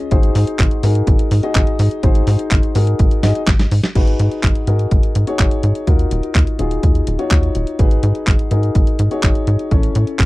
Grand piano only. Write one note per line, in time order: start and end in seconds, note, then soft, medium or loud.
0.11 0.80 D#4 medium
0.11 0.80 F#4 medium
0.11 0.80 G#4 medium
0.11 0.80 C5 loud
0.83 1.41 D#4 medium
0.83 1.41 F#4 medium
0.83 1.41 G#4 medium
0.83 1.41 A#4 medium
1.43 2.00 D#4 medium
1.43 2.00 F#4 medium
1.43 2.01 G#4 medium
1.43 2.00 D#5 loud
2.03 2.72 D#4 medium
2.03 2.72 F#4 medium
2.03 2.72 G#4 medium
2.03 2.72 C5 loud
2.75 3.21 D#4 medium
2.75 3.21 F#4 medium
2.75 3.21 G#4 medium
2.75 3.21 A#4 medium
3.23 3.41 D#4 medium
3.23 3.41 F#4 medium
3.23 3.41 G#4 medium
3.23 3.41 D#5 loud
3.95 4.65 D#4 medium
3.95 4.65 F#4 medium
3.95 4.65 G#4 medium
3.95 4.65 B4 loud
4.67 5.25 D#4 medium
4.67 5.25 F#4 medium
4.67 5.25 G#4 medium
4.67 5.25 A#4 medium
5.27 5.84 D#4 medium
5.27 5.84 F#4 medium
5.27 5.84 G#4 medium
5.27 5.84 C#5 loud
5.87 6.56 D#4 medium
5.87 6.56 F4 medium
5.87 6.56 F#4 medium
5.87 6.56 A#4 medium
6.59 7.17 D#4 medium
6.59 7.17 F4 medium
6.59 7.17 F#4 medium
6.59 7.17 G#4 medium
7.19 7.76 D#4 medium
7.19 7.76 F4 medium
7.19 7.76 F#4 medium
7.19 7.76 C#5 loud
7.79 8.48 D#4 medium
7.79 8.48 F#4 medium
7.79 8.48 G#4 medium
7.79 8.48 B4 medium
8.51 9.09 D#4 medium
8.51 9.09 F#4 medium
8.51 9.09 G#4 medium
8.51 9.09 A#4 medium
9.11 9.68 D#4 medium
9.11 9.68 F#4 medium
9.11 9.68 G#4 medium
9.11 9.68 C#5 loud
9.71 10.26 C#4 medium
9.71 10.26 E4 medium
9.71 10.26 A4 medium
9.71 10.26 C#5 medium